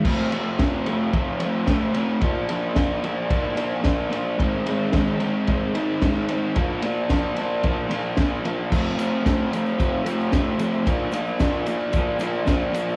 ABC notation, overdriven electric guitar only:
X:1
M:4/4
L:1/8
Q:1/4=111
K:Bb
V:1 name="Overdriven electric guitar" clef=bass
[F,,C,F,A,C] [F,,C,F,A,C] [F,,C,F,A,C] [F,,C,F,A,C] [F,,C,F,A,C] [F,,C,F,A,C] [F,,C,F,A,C] [F,,C,F,A,C] | [B,,F,B,D] [B,,F,B,D] [B,,F,B,D] [B,,F,B,D] [B,,F,B,D] [B,,F,B,D] [B,,F,B,D] [B,,F,B,D] | [_A,,E,_A,CE] [A,,E,A,CE] [A,,E,A,CE] [A,,E,A,CE] [A,,E,A,CE] [A,,E,A,CE] [A,,E,A,CE] [A,,E,A,CE] | [B,,F,B,D] [B,,F,B,D] [B,,F,B,D] [B,,F,B,D] [B,,F,B,D] [B,,F,B,D] [B,,F,B,D] [B,,F,B,D] |
[F,,C,F,A,C] [F,,C,F,A,C] [F,,C,F,A,C] [F,,C,F,A,C] [F,,C,F,A,C] [F,,C,F,A,C] [F,,C,F,A,C] [F,,C,F,A,C] | [B,,F,B,D] [B,,F,B,D] [B,,F,B,D] [B,,F,B,D] [B,,F,B,D] [B,,F,B,D] [B,,F,B,D] [B,,F,B,D] |]